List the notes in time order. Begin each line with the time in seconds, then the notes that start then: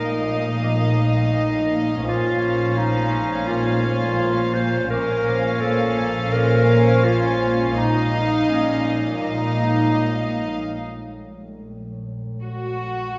Already playing: A#1 A#2 A#3 D#4 A#4 D#5 F5
0.28 A#2
0.64 A#2
1.01 A#3
1.37 A#2
1.72 A#3
2.06 A#1 A#2 C#4 F4 C5 F5
2.44 A#2
2.78 A#3 D#4
3.14 A#2
3.47 A#2 F4
3.86 A#3
4.21 A#2
4.55 A#3 C5
4.90 A#1 A#2 C#4 A#4 C5 F5
5.28 A#2
5.61 A#3 A4
6.00 A#2
6.33 A#2 A#4
6.71 A#3
7.04 A#2 F4
7.43 A#3
7.76 A#1 A#2 D#4 D#5 F5
8.14 A#2
8.49 A#3 C#4
8.84 A#2
9.20 A#2 D#4 D#5 F5
9.57 A#3
9.94 A#2
10.29 A#3
10.63 A#1
12.42 F#4